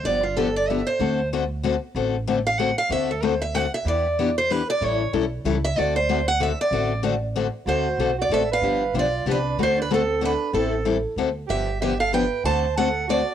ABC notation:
X:1
M:3/4
L:1/8
Q:"Swing" 1/4=188
K:Dmix
V:1 name="Steel-string acoustic guitar"
d =F A d e c- | c2 z4 | z3 =f ^f =f | e A c e f e |
d3 c B d | ^c2 z3 e | d c2 f e d- | d2 z4 |
c3 d e =f- | =f2 d2 B2 | c B A2 B2 | A2 z4 |
e2 e =f g2 | a2 f2 d2 |]
V:2 name="Soprano saxophone"
z6 | z6 | z6 | z6 |
z6 | z6 | z6 | z6 |
F3 F A B- | B2 =F2 D2 | F D C2 D2 | C2 z4 |
G2 G A B2 | c2 A2 F2 |]
V:3 name="Steel-string acoustic guitar"
[D,=F,B,DG] z [D,F,B,DG] z [D,F,B,DG] z | [D,A,CFA] z [D,A,CFA] z [D,A,CFA] z | [D,A,CFA] z [D,A,CFA] z [D,A,CFA] z | [D,A,CFA] z [D,A,CFA] z [D,A,CFA] z |
[E,B,DG] z [E,B,DG] z [E,B,DG] z | [E,G,^CEA] z [E,G,CEA] z [E,G,CEA] z | [D,A,CFA] z [D,A,CFA] z [D,A,CFA] z | [D,A,CFA] z [D,A,CFA] z [D,A,CFA] z |
[D,A,CFA] z [D,A,CFA] z [D,A,CFA] z | [D,=F,B,DG] z [D,F,B,DG] z [D,F,B,DG] z | [D,A,CFA] z [D,A,CFA] z [D,A,CFA] z | [E,G,CEA] z [E,G,CEA] z [D,A,CFA] z |
[D,=F,B,DG] z [D,F,B,DG] z [D,F,B,DG] z | [D,A,CFA] z [D,A,CFA] z [D,A,CFA] z |]
V:4 name="Upright bass" clef=bass
G,,,6 | D,,6 | A,,,6 | D,,6 |
E,,6 | A,,,2 B,,,2 ^C,,2 | D,,6 | A,,,6 |
D,,2 B,,,2 A,,,2 | G,,,2 B,,,2 C,,2 | D,,6 | A,,,4 D,,2 |
G,,,6 | D,,6 |]